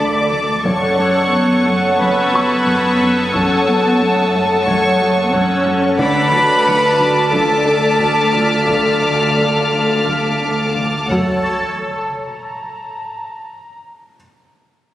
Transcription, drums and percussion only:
0.64 taiko
1.99 taiko
2.67 taiko
3.34 taiko
4.67 taiko
5.32 taiko
5.99 taiko
7.32 taiko
7.99 taiko
8.67 taiko
10.06 taiko
10.75 taiko
11.10 taiko

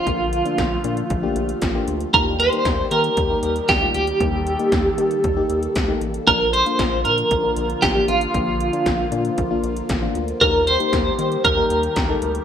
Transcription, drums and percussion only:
0.07 kick, closed hi-hat
0.33 closed hi-hat
0.46 closed hi-hat
0.58 kick, snare, closed hi-hat
0.84 closed hi-hat
0.97 closed hi-hat
1.10 kick, closed hi-hat
1.36 closed hi-hat
1.49 closed hi-hat
1.62 kick, snare, closed hi-hat
1.88 closed hi-hat
2.00 closed hi-hat
2.14 kick, closed hi-hat
2.40 closed hi-hat
2.53 closed hi-hat
2.65 kick, snare, closed hi-hat
2.91 closed hi-hat
3.04 closed hi-hat
3.17 kick, closed hi-hat
3.43 closed hi-hat
3.56 closed hi-hat
3.68 kick, snare, closed hi-hat
3.94 closed hi-hat
4.07 closed hi-hat
4.20 kick, closed hi-hat
4.47 closed hi-hat
4.59 closed hi-hat
4.72 kick, snare, closed hi-hat
4.98 closed hi-hat
5.11 closed hi-hat
5.24 kick, closed hi-hat
5.50 closed hi-hat
5.63 closed hi-hat
5.75 kick, snare, closed hi-hat
6.01 closed hi-hat
6.14 closed hi-hat
6.27 kick, closed hi-hat
6.54 closed hi-hat
6.66 closed hi-hat
6.79 kick, snare, closed hi-hat
7.05 closed hi-hat
7.18 closed hi-hat
7.31 kick, closed hi-hat
7.57 closed hi-hat
7.70 closed hi-hat
7.82 kick, snare, closed hi-hat
8.08 closed hi-hat
8.21 closed hi-hat
8.34 kick, closed hi-hat
8.60 closed hi-hat
8.73 closed hi-hat
8.86 kick, snare, closed hi-hat
9.12 closed hi-hat
9.25 closed hi-hat
9.38 kick, closed hi-hat
9.64 closed hi-hat
9.77 closed hi-hat
9.89 kick, snare, closed hi-hat
10.15 closed hi-hat
10.28 closed hi-hat
10.41 kick, closed hi-hat
10.67 closed hi-hat
10.80 closed hi-hat
10.93 kick, snare, closed hi-hat
11.19 closed hi-hat
11.32 closed hi-hat
11.45 kick, closed hi-hat
11.70 closed hi-hat
11.83 closed hi-hat
11.96 kick, snare, closed hi-hat
12.22 closed hi-hat
12.35 closed hi-hat

